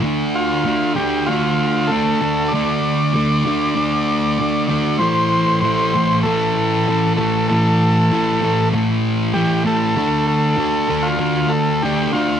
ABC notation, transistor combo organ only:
X:1
M:4/4
L:1/16
Q:1/4=97
K:Ddor
V:1 name="Transistor combo organ"
z2 F4 G2 F4 A4 | d12- d2 d2 | c4 c4 A6 A2 | A8 z4 G2 A2- |
A2 A4- A F3 A2 G2 F2 |]